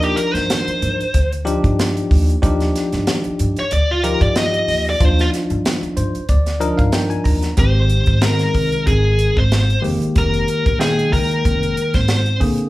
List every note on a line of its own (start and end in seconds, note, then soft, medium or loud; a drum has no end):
0.00 0.12 D#2 loud
0.00 1.04 F3 medium
0.00 1.04 D4 medium
0.00 1.04 D#4 medium
0.00 0.18 G4 medium
0.00 1.04 A#4 medium
0.00 closed hi-hat soft
0.16 0.34 A#4 medium
0.16 closed hi-hat medium
0.34 0.47 G2 medium
0.34 1.32 C5 medium
0.34 snare soft
0.34 closed hi-hat soft
0.50 snare loud
0.50 closed hi-hat medium
0.67 muted upright bass stroke soft
0.67 closed hi-hat soft
0.82 0.97 G2 medium
0.82 closed hi-hat medium
1.01 muted upright bass stroke soft
1.01 closed hi-hat soft
1.14 1.55 D2 medium
1.14 kick medium
1.14 closed hi-hat medium
1.32 closed hi-hat soft
1.45 2.35 F3 medium
1.45 2.35 D4 medium
1.45 2.35 D#4 medium
1.45 2.35 G4 medium
1.45 closed hi-hat medium
1.64 2.02 G2 medium
1.64 kick medium
1.64 closed hi-hat soft
1.79 snare loud
1.79 closed hi-hat medium
1.97 closed hi-hat soft
2.11 2.37 D#2 medium
2.11 kick medium
2.11 open hi-hat medium
2.29 closed hi-hat soft
2.42 2.69 D#2 loud
2.42 3.61 F3 medium
2.42 3.61 D4 medium
2.42 3.61 D#4 medium
2.42 3.61 G4 medium
2.42 kick loud
2.42 closed hi-hat medium
2.60 snare soft
2.60 closed hi-hat soft
2.76 snare soft
2.76 closed hi-hat medium
2.92 3.05 G2 medium
2.92 snare soft
2.92 closed hi-hat soft
3.07 snare loud
3.07 closed hi-hat medium
3.24 muted upright bass stroke soft
3.24 closed hi-hat soft
3.39 3.54 G2 loud
3.39 closed hi-hat medium
3.56 3.72 C#5 medium
3.56 muted upright bass stroke soft
3.56 closed hi-hat soft
3.71 4.12 D2 medium
3.71 3.89 D5 loud
3.71 closed hi-hat medium
3.91 4.05 F4 soft
4.03 4.93 F3 medium
4.03 4.93 D#4 medium
4.03 4.93 F4 medium
4.03 4.93 G4 medium
4.03 4.21 A#4 medium
4.03 closed hi-hat medium
4.21 4.59 G2 medium
4.21 4.36 D5 medium
4.21 kick medium
4.21 closed hi-hat soft
4.36 4.83 D#5 medium
4.36 snare loud
4.36 closed hi-hat medium
4.54 closed hi-hat soft
4.68 4.94 D#2 medium
4.68 open hi-hat medium
4.90 5.05 D5 medium
5.00 5.27 D#2 medium
5.00 6.19 F3 medium
5.00 6.19 D4 medium
5.00 6.19 D#4 medium
5.00 6.19 F4 medium
5.00 kick loud
5.00 closed hi-hat medium
5.05 5.20 C5 medium
5.19 5.29 F4 medium
5.19 snare soft
5.19 closed hi-hat soft
5.34 snare soft
5.34 closed hi-hat medium
5.50 5.62 G2 medium
5.50 closed hi-hat soft
5.65 snare loud
5.65 closed hi-hat medium
5.82 muted upright bass stroke soft
5.82 closed hi-hat soft
5.97 6.11 G2 medium
5.97 6.27 C5 medium
5.97 closed hi-hat medium
6.15 muted upright bass stroke soft
6.15 closed hi-hat soft
6.29 6.69 D2 medium
6.29 6.59 D5 medium
6.29 kick medium
6.29 closed hi-hat medium
6.46 snare soft
6.46 closed hi-hat soft
6.60 7.50 F3 medium
6.60 7.50 D4 medium
6.60 7.50 D#4 medium
6.60 7.50 A#4 loud
6.60 6.77 D#5 medium
6.60 closed hi-hat medium
6.77 7.17 G2 medium
6.77 6.92 F5 medium
6.77 kick medium
6.77 closed hi-hat soft
6.92 7.10 G5 medium
6.92 snare loud
6.92 closed hi-hat medium
7.10 7.24 G#5 medium
7.10 closed hi-hat soft
7.24 7.52 D#2 medium
7.24 7.55 A#5 medium
7.24 kick medium
7.24 open hi-hat medium
7.42 snare soft
7.42 closed hi-hat soft
7.57 7.98 G#1 medium
7.57 8.17 D#3 medium
7.57 8.17 G#3 medium
7.57 8.17 C4 medium
7.57 8.17 G4 medium
7.57 8.25 C5 medium
7.57 kick loud
7.57 closed hi-hat medium
7.89 closed hi-hat medium
8.06 8.45 G#2 medium
8.06 kick medium
8.06 closed hi-hat soft
8.21 9.41 D#3 medium
8.21 9.41 G#3 medium
8.21 9.41 C4 medium
8.21 9.41 A#4 medium
8.21 8.87 A#4 medium
8.21 snare loud
8.21 closed hi-hat medium
8.39 snare soft
8.39 closed hi-hat soft
8.54 8.81 C2 medium
8.54 kick medium
8.54 open hi-hat medium
8.72 closed hi-hat soft
8.87 9.27 G#1 medium
8.87 9.39 G#4 medium
8.87 kick medium
8.87 closed hi-hat medium
9.19 closed hi-hat medium
9.36 9.75 G#1 medium
9.36 9.81 C5 medium
9.36 kick medium
9.52 snare loud
9.52 closed hi-hat medium
9.70 closed hi-hat soft
9.82 9.99 F1 medium
9.82 10.72 D#3 medium
9.82 10.72 G#3 medium
9.82 10.72 A#3 medium
9.82 10.72 G4 medium
9.82 open hi-hat medium
10.02 muted upright bass stroke soft
10.02 closed hi-hat soft
10.16 10.42 F1 medium
10.16 10.80 A#4 medium
10.16 kick loud
10.16 closed hi-hat medium
10.34 closed hi-hat soft
10.48 closed hi-hat medium
10.66 11.13 A#1 medium
10.66 kick medium
10.66 closed hi-hat soft
10.79 11.99 D#3 medium
10.79 11.99 G#3 medium
10.79 11.99 A#3 medium
10.79 11.11 G#4 medium
10.79 11.99 G5 medium
10.79 snare loud
10.79 closed hi-hat medium
10.99 closed hi-hat soft
11.13 11.27 D#2 medium
11.13 11.98 A#4 medium
11.13 kick medium
11.13 open hi-hat medium
11.31 closed hi-hat soft
11.45 11.71 F1 medium
11.45 kick medium
11.45 closed hi-hat medium
11.63 closed hi-hat soft
11.77 closed hi-hat medium
11.94 12.41 G#1 medium
11.94 12.39 C5 medium
11.94 kick medium
11.94 snare soft
11.94 closed hi-hat soft
12.08 snare loud
12.08 closed hi-hat medium
12.26 closed hi-hat soft
12.40 12.56 A#1 medium
12.40 12.69 D3 medium
12.40 12.69 A#3 medium
12.40 12.69 C4 medium
12.40 12.69 G#4 medium
12.40 kick medium
12.40 open hi-hat medium
12.58 closed hi-hat soft